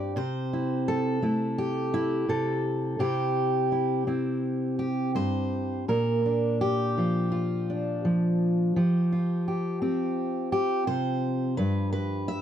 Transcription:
Already playing: G2 C4 E4 G4 D5
0.16 C3 C5
0.53 E4
0.88 A4
1.22 A3 E4
1.58 G4
1.94 E4
2.29 C3 A4
2.99 C3 C4 E4 G4
3.72 E4
4.07 C4 E4
4.79 G4
5.15 G2 C5
5.88 A#2 A#4
6.26 D4
6.61 G4
6.98 F3 F4
7.32 F4
7.70 D4
8.05 F3
8.76 F3 G4
9.12 F4
9.48 G4
9.82 C4 G4
10.52 G4
10.87 C3 C5
11.57 G2 B4
11.93 B4
12.28 E5

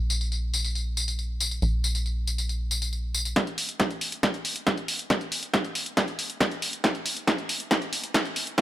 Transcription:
Already playing: A#1
0.10 tambourine
0.21 tambourine
0.32 tambourine
0.54 tambourine
0.64 tambourine
0.75 tambourine
0.97 tambourine
1.08 tambourine
1.19 tambourine
1.40 tambourine
1.51 tambourine
1.62 A#1, tambourine
1.84 tambourine
1.95 tambourine
2.06 tambourine
2.27 tambourine
2.38 tambourine
2.49 tambourine
2.71 tambourine
2.82 tambourine
2.93 tambourine
3.14 tambourine
3.25 tambourine
3.36 kick, snare, closed hi-hat
3.47 closed hi-hat
3.58 open hi-hat
3.69 closed hi-hat
3.80 kick, snare, closed hi-hat
3.91 closed hi-hat
4.01 open hi-hat
4.12 closed hi-hat
4.23 kick, snare, closed hi-hat
4.34 closed hi-hat
4.45 open hi-hat
4.56 closed hi-hat
4.67 kick, snare, closed hi-hat
4.77 closed hi-hat
4.88 open hi-hat
4.99 closed hi-hat
5.10 kick, snare, closed hi-hat
5.21 closed hi-hat
5.32 open hi-hat
5.43 closed hi-hat
5.54 kick, snare, closed hi-hat
5.64 closed hi-hat
5.75 open hi-hat
5.86 closed hi-hat
5.97 kick, snare, closed hi-hat
6.08 closed hi-hat
6.19 open hi-hat
6.30 closed hi-hat
6.41 kick, snare, closed hi-hat
6.51 closed hi-hat
6.62 open hi-hat
6.73 closed hi-hat
6.84 kick, snare, closed hi-hat
6.95 closed hi-hat
7.06 open hi-hat
7.17 closed hi-hat
7.27 kick, snare, closed hi-hat
7.38 closed hi-hat
7.49 open hi-hat
7.60 closed hi-hat
7.71 kick, snare, closed hi-hat
7.82 closed hi-hat
7.93 open hi-hat
8.04 closed hi-hat
8.14 kick, snare, closed hi-hat
8.25 closed hi-hat
8.36 open hi-hat
8.47 closed hi-hat
8.58 kick, snare, closed hi-hat

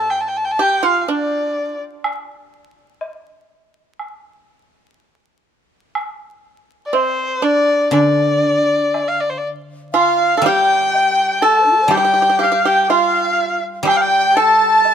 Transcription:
Already playing: A2 A5
0.10 G5, high woodblock
0.20 A5
0.28 G5
0.36 A5
0.45 G5
0.51 A5
0.59 G4 G5
0.83 F4 F5
1.01 F5
1.08 D4 D5
2.04 high woodblock
3.01 low woodblock
3.99 high woodblock
5.95 high woodblock
6.86 D5
6.93 C4 C5, low woodblock
7.42 D4 D5
7.91 D3 D4 D5, high woodblock
8.94 high woodblock, low woodblock
9.08 F5
9.20 D5
9.29 C5
9.37 D5
9.93 F4 F5, high woodblock
9.99 F5
10.37 A4
10.42 G3 G5
10.46 G4 G5
10.94 low woodblock
11.41 A4 A5
11.58 A4 C5
11.66 D4
11.71 F4
11.76 G4 A4
11.82 C5 D5
11.88 G3 G4 F5
11.92 G5, high woodblock
11.97 G4
12.05 G4
12.14 G4
12.22 G4
12.29 G4
12.39 G4 F5
12.43 G4 F5
12.52 G4
12.65 G4 G5
12.83 G5
12.90 F4 F5, high woodblock, low woodblock
13.83 G3 G4 G5
13.87 G5, high woodblock
13.97 F5 G5
14.01 G5
14.35 A4 A5
14.85 low woodblock

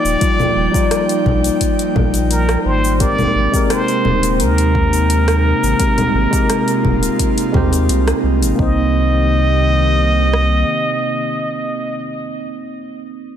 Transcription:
Already playing: F3 A#3 D#4 F4 D5 G5
0.05 D#1, cabasa
0.20 G3 D#4 F4 D5, kick, closed hi-hat, cabasa
0.40 low conga, cabasa
0.56 D#1
0.72 G3 D#4 F4, kick, closed hi-hat, cabasa
0.76 D5
0.91 cross-stick, closed hi-hat, cabasa
1.09 closed hi-hat, cabasa
1.26 A#1, kick, low conga
1.44 closed hi-hat, cabasa
1.61 kick, closed hi-hat, cabasa
1.79 closed hi-hat, cabasa
1.96 A#1, kick, low conga
2.14 closed hi-hat, cabasa
2.31 A#4, closed hi-hat, cabasa
2.49 cross-stick, closed hi-hat, cabasa
2.65 G#1 C5
2.85 cabasa
2.99 C3 G#3 C4 G4 A#4 D5, kick, closed hi-hat, cabasa
3.19 low conga, cabasa
3.35 G#1
3.51 G#3 C4 G4, kick, closed hi-hat, cabasa
3.56 A#4
3.70 C5, cross-stick, closed hi-hat, cabasa
3.88 closed hi-hat, cabasa
4.05 D#1, low conga
4.23 closed hi-hat, cabasa
4.40 D#2 A#4, closed hi-hat, cabasa
4.58 closed hi-hat, cabasa
4.75 kick
4.93 closed hi-hat, cabasa
5.10 closed hi-hat, cabasa
5.28 cross-stick, closed hi-hat, cabasa
5.63 G#1, cabasa
5.79 G#3 C4 F4 G4 A#4, kick, closed hi-hat, cabasa
5.98 closed hi-hat, low conga, cabasa
6.14 G#1
6.30 G#3 C4 G4, kick, closed hi-hat, cabasa
6.35 A#4
6.50 cross-stick, closed hi-hat, cabasa
6.68 closed hi-hat, cabasa
6.85 D#1, kick, low conga
7.03 closed hi-hat, cabasa
7.19 kick, closed hi-hat, cabasa
7.38 closed hi-hat, cabasa
7.52 D#2 G#3 C4 G4, kick, low conga
7.57 C5
7.73 closed hi-hat, cabasa
7.89 C2, closed hi-hat, cabasa
8.08 cross-stick, closed hi-hat, cabasa
8.24 C2
8.42 G#1, closed hi-hat, cabasa
8.55 C2 C3 D#3 A#3 C4 G4 D#5, kick
8.60 D#4 C5 D#5
10.33 cross-stick

